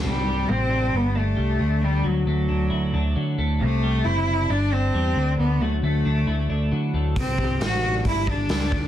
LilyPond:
<<
  \new Staff \with { instrumentName = "Cello" } { \time 4/4 \key d \mixolydian \tempo 4 = 135 g4 c'4 b8 a4. | g8 fis8 fis2 r4 | a4 e'4 d'8 c'4. | b8 a8 a2 r4 |
c'4 fis'4 e'8 d'4. | }
  \new Staff \with { instrumentName = "Clean electric guitar" } { \clef bass \time 4/4 \key d \mixolydian c8 g8 c'8 d'8 g,8 d'8 g8 d8 | d8 fis8 a8 d'8 e'8 d'8 fis8 a8 | c8 g8 c'8 d'8 g,8 d'8 g8 d8 | d8 fis8 a8 d'8 e'8 d'8 fis8 a8 |
c8 g8 c'8 d'8 g,8 d'8 g8 d8 | }
  \new Staff \with { instrumentName = "Picked electric bass" } { \clef bass \time 4/4 \key d \mixolydian c,4 a,,4 g,,4 c,8 d,8 | d,8 d,8 d,8 d,8 d,8 d,8 d8 d,8 | c,4 fis,,4 g,,4 e,8 d,8 | d,8 d,8 d,8 d,8 d,8 d,8 d8 d,8 |
c,4 a,,4 g,,4 cis,8 d,8 | }
  \new DrumStaff \with { instrumentName = "Drums" } \drummode { \time 4/4 r4 r4 r4 r4 | r4 r4 r4 r4 | r4 r4 r4 r4 | r4 r4 r4 r4 |
<hho bd>8 bd8 <hho sn>16 sn8. <hho bd>8 bd8 <hho sn>8 bd8 | }
>>